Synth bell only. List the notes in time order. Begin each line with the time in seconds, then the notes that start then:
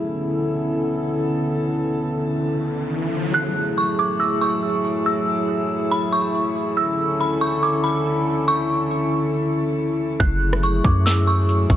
3.34 F#6
3.78 C#6
3.99 D6
4.20 E6
4.41 C#6
5.06 E6
5.91 B5
6.13 C#6
6.77 E6
7.21 B5
7.41 C#6
7.63 D6
7.84 B5
8.48 C#6
10.20 F#6
10.63 C#6
10.85 D6
11.06 E6
11.27 C#6